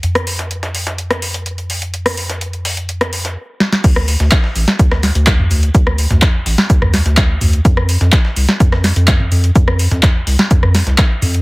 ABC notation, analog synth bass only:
X:1
M:4/4
L:1/16
Q:1/4=126
K:Dm
V:1 name="Analog synth bass" clef=bass
F,,16- | F,,12 z4 | D,,3 D,, z2 A,,, z D,,3 D,,3 D,,2 | D,,3 D,, z2 A,,, z D,,3 D,,3 D,,2 |
F,,3 F,, z2 C,, z F,,3 F,,3 F,,2 | F,,3 F,, z2 C,, z F,,3 C,, z2 F,,2 |]